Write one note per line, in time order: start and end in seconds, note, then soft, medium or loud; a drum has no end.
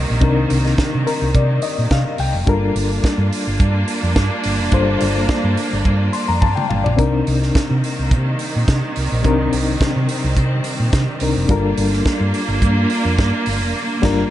0.00 0.17 C3 medium
0.00 2.44 C3 medium
0.00 2.44 D#3 medium
0.00 2.44 G3 medium
0.00 2.43 A#3 medium
0.00 0.17 C4 medium
0.00 0.18 D4 medium
0.00 0.18 D#4 medium
0.00 0.18 A#4 medium
0.10 0.22 A#1 medium
0.21 0.44 C2 loud
0.21 2.43 C3 medium
0.21 2.43 C4 medium
0.21 2.44 D4 medium
0.21 2.44 D#4 medium
0.21 1.05 A#4 medium
0.21 kick loud
0.21 closed hi-hat medium
0.50 0.73 C2 medium
0.50 open hi-hat medium
0.66 snare soft
0.78 kick loud
0.78 snare loud
0.78 closed hi-hat medium
0.95 1.05 C3 medium
1.07 1.33 A#4 medium
1.07 open hi-hat medium
1.22 1.32 C2 medium
1.35 1.57 C3 medium
1.35 1.61 D5 medium
1.35 kick loud
1.35 closed hi-hat medium
1.62 1.89 D#5 medium
1.62 open hi-hat medium
1.78 1.89 A#2 medium
1.91 2.03 C3 loud
1.91 2.17 F5 medium
1.91 kick loud
1.91 snare loud
1.91 closed hi-hat medium
2.18 2.31 C2 medium
2.18 2.46 G5 medium
2.18 open hi-hat medium
2.34 2.45 F1 medium
2.46 2.70 G1 medium
2.46 4.68 G3 medium
2.46 6.95 G3 medium
2.46 6.95 A#3 medium
2.46 4.69 D4 medium
2.46 6.95 D4 medium
2.46 4.69 F4 medium
2.46 6.95 F4 medium
2.46 4.69 A4 medium
2.46 4.70 A#4 medium
2.46 kick loud
2.46 closed hi-hat medium
2.75 2.98 G1 loud
2.75 open hi-hat medium
3.04 muted fingered electric bass stroke soft
3.04 kick loud
3.04 snare loud
3.04 closed hi-hat medium
3.18 3.29 G2 medium
3.32 open hi-hat medium
3.47 3.58 G1 medium
3.60 3.83 G2 loud
3.60 kick loud
3.60 closed hi-hat medium
3.88 open hi-hat medium
4.03 4.14 F2 medium
4.16 4.28 G2 medium
4.16 kick loud
4.16 snare loud
4.16 closed hi-hat medium
4.43 4.60 G1 medium
4.43 open hi-hat medium
4.60 4.71 F1 loud
4.71 4.95 G1 loud
4.71 6.94 G3 medium
4.71 6.94 D4 medium
4.71 6.95 F4 medium
4.71 6.95 A4 medium
4.71 6.95 C5 medium
4.71 kick loud
4.71 closed hi-hat medium
5.00 5.24 G1 medium
5.00 open hi-hat medium
5.29 kick loud
5.29 snare loud
5.29 closed hi-hat medium
5.44 5.55 G2 medium
5.57 open hi-hat medium
5.73 5.83 G1 medium
5.85 6.08 G2 medium
5.85 kick loud
5.85 closed hi-hat medium
6.13 6.28 C6 medium
6.13 open hi-hat medium
6.28 6.42 F2 medium
6.28 6.41 A#5 medium
6.42 6.54 G2 medium
6.42 6.56 A5 medium
6.42 kick loud
6.42 high tom medium
6.56 6.69 G5 medium
6.56 mid tom medium
6.69 6.82 G1 medium
6.69 6.84 F5 medium
6.69 mid tom medium
6.84 6.99 A#1 medium
6.84 7.12 D5 medium
6.84 floor tom medium
6.96 7.21 C2 medium
6.96 9.19 C3 medium
6.96 11.46 C3 medium
6.96 11.46 D#3 medium
6.96 14.30 G3 medium
6.96 9.22 A#3 medium
6.96 9.19 C4 medium
6.96 9.20 D4 medium
6.96 9.20 D#4 medium
6.96 9.20 A#4 medium
6.96 kick loud
6.96 closed hi-hat medium
7.27 7.50 C2 loud
7.27 open hi-hat medium
7.42 snare soft
7.55 kick loud
7.55 snare medium
7.55 closed hi-hat medium
7.70 7.81 C3 medium
7.84 open hi-hat medium
7.99 8.13 C2 medium
8.11 8.34 C3 loud
8.11 kick loud
8.11 closed hi-hat medium
8.39 open hi-hat medium
8.56 8.66 A#2 medium
8.68 8.80 C3 medium
8.68 kick loud
8.68 snare loud
8.68 closed hi-hat medium
8.96 9.09 C2 medium
8.96 open hi-hat medium
9.12 9.25 A#1 medium
9.23 9.47 C2 medium
9.23 11.17 C3 medium
9.23 11.17 C4 medium
9.23 11.48 C4 medium
9.23 11.18 D4 medium
9.23 11.18 D#4 medium
9.23 11.18 A#4 medium
9.23 kick loud
9.23 closed hi-hat medium
9.52 9.75 C2 medium
9.52 open hi-hat medium
9.81 kick loud
9.81 snare loud
9.81 closed hi-hat medium
9.96 10.06 C3 medium
10.08 open hi-hat medium
10.24 10.35 C2 medium
10.37 10.59 C3 loud
10.37 kick loud
10.37 closed hi-hat medium
10.64 open hi-hat medium
10.80 10.90 A#2 medium
10.93 11.05 C3 loud
10.93 kick loud
10.93 snare loud
10.93 closed hi-hat medium
11.20 11.33 C2 medium
11.20 11.50 C3 medium
11.20 11.50 C4 soft
11.20 11.48 D4 soft
11.20 11.50 D#4 soft
11.20 11.50 A#4 medium
11.20 open hi-hat medium
11.36 11.47 F1 medium
11.48 11.72 G1 loud
11.48 13.70 G3 medium
11.48 14.30 A#3 loud
11.48 14.30 D4 medium
11.48 13.71 D4 medium
11.48 14.30 F4 medium
11.48 13.71 F4 medium
11.48 13.71 A4 medium
11.48 13.72 A#4 medium
11.48 kick loud
11.48 closed hi-hat medium
11.77 12.00 G1 loud
11.77 open hi-hat medium
11.93 snare soft
12.06 kick loud
12.06 snare loud
12.06 closed hi-hat medium
12.20 12.31 G2 loud
12.34 open hi-hat medium
12.48 12.59 G1 medium
12.62 12.85 G2 loud
12.62 kick loud
12.62 closed hi-hat medium
12.90 open hi-hat medium
13.05 13.16 F2 medium
13.19 13.31 G2 medium
13.19 kick loud
13.19 snare loud
13.19 closed hi-hat medium
13.46 13.62 G1 medium
13.46 open hi-hat medium
13.62 13.72 F1 loud
14.02 14.23 G1 medium
14.02 14.22 G3 medium
14.02 14.22 D4 loud
14.02 14.23 F4 medium
14.02 14.24 A#4 medium
14.02 kick loud
14.02 snare loud
14.02 crash medium